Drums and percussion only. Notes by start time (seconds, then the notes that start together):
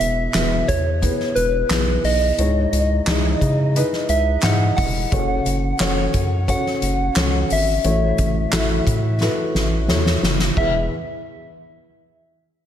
0.01 closed hi-hat
0.34 snare, clap, closed hi-hat
0.69 kick, closed hi-hat
1.03 kick, closed hi-hat
1.20 snare
1.36 closed hi-hat
1.70 snare, clap, closed hi-hat
2.04 open hi-hat
2.39 closed hi-hat
2.73 closed hi-hat
3.07 snare, clap, closed hi-hat
3.41 kick, closed hi-hat
3.76 closed hi-hat
3.92 snare
4.09 closed hi-hat
4.42 snare, clap, closed hi-hat
4.78 kick, open hi-hat
5.12 kick, closed hi-hat
5.46 closed hi-hat
5.80 snare, clap, closed hi-hat
6.14 kick, closed hi-hat
6.48 kick, closed hi-hat
6.66 snare
6.82 closed hi-hat
7.16 snare, clap, closed hi-hat
7.50 open hi-hat
7.84 closed hi-hat
8.18 kick, closed hi-hat
8.53 snare, clap, closed hi-hat
8.87 kick, closed hi-hat
9.21 snare
9.55 snare
9.88 snare
10.06 snare
10.23 snare
10.39 snare
10.57 kick, crash